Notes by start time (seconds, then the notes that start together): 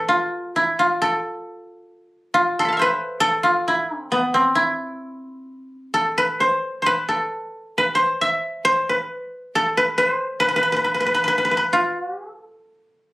Already playing: A4 B4 E5
0.09 F4
0.56 E4
0.79 F4
1.02 A4
2.34 F4
2.59 A4 C6
2.65 A5 B5
2.73 F5
2.77 C5 E5
2.82 B4
3.20 A4
3.43 F4
3.68 E4
3.97 C4
4.12 B3
4.34 C4
4.55 E4
5.94 A4
6.18 B4
6.40 C5
6.82 C5
6.86 B4
7.09 A4
7.78 B4
7.95 C5
8.21 E5
8.65 C5
8.89 B4
9.55 A4
9.77 B4
9.98 C5
10.40 B4
10.49 B4
10.56 B4
10.63 B4
10.72 B4
10.77 B4
10.84 B4
10.94 B4
11.00 B4
11.06 B4
11.14 B4
11.24 B4
11.38 B4
11.45 B4
11.51 B4
11.57 B4
11.73 F4
12.31 A4